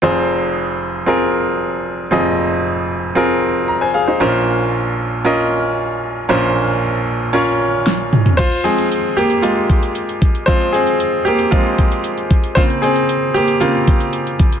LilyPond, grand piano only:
<<
  \new Staff \with { instrumentName = "Grand piano" } { \time 4/4 \key f \minor \tempo 4 = 115 << { r1 | r2. bes''16 <c'' aes''>16 <aes' f''>16 <ees' c''>16~ | <ees' c''>16 r2. r8. | r1 |
<f' c''>8 aes'4 <bes g'>8 <aes f'>4. r8 | <f' c''>8 <c' aes'>4 <bes g'>8 f'4. r8 | <f' c''>8 <c' aes'>4 <bes g'>8 f'4. r8 | } \\ { <c' f' aes' c''>2 <c' f' aes' bes'>2 | <c' f' aes' ees''>2 <c' f' aes' bes'>2 | <des' f' bes' c''>2 <des' f' bes' ees''>2 | <des' f' bes' c''>2 <des' f' bes' des''>2 |
r1 | r1 | r1 | } >> }
  \new Staff \with { instrumentName = "Grand piano" } { \clef bass \time 4/4 \key f \minor <f,, f,>1 | <f,, f,>1 | <bes,, bes,>1 | <bes,, bes,>1 |
r8 <f aes c'>8 r2. | <f aes c'>2 <f aes c'>8 r4. | <des bes c'>4. r8 <des bes c'>8 r4. | }
>>